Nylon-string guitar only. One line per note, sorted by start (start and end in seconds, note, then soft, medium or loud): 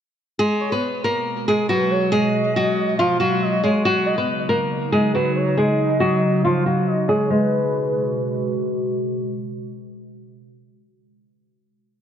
0.39 0.70 G#3 medium
0.39 0.70 G#4 loud
0.72 1.03 B3 medium
0.72 1.02 B4 medium
1.04 1.45 A#3 medium
1.04 1.45 A#4 medium
1.48 1.69 G#3 medium
1.48 1.68 G#4 medium
1.69 2.10 F#3 medium
1.69 2.10 F#4 medium
2.12 2.53 G#3 medium
2.12 2.53 G#4 loud
2.56 2.97 F#3 medium
2.56 2.96 F#4 medium
2.99 3.20 F3 medium
2.99 3.19 F4 medium
3.20 3.61 F#3 medium
3.20 3.61 F#4 medium
3.63 3.84 G#3 medium
3.63 3.84 G#4 medium
3.85 4.16 F#3 medium
3.85 4.16 F#4 loud
4.18 4.48 B3 medium
4.18 4.48 B4 medium
4.49 4.90 A#3 medium
4.49 4.90 A#4 medium
4.92 5.13 G#3 medium
4.92 5.13 G#4 medium
5.15 5.56 F#3 medium
5.15 5.55 F#4 medium
5.57 5.98 G#3 medium
5.57 5.98 G#4 medium
6.00 6.41 F#3 medium
6.00 6.41 F#4 medium
6.45 6.65 F3 medium
6.45 6.65 F4 medium
6.66 7.07 F#3 medium
6.66 7.06 F#4 medium
7.09 7.29 G#3 medium
7.09 7.29 G#4 medium
7.30 8.56 G#3 medium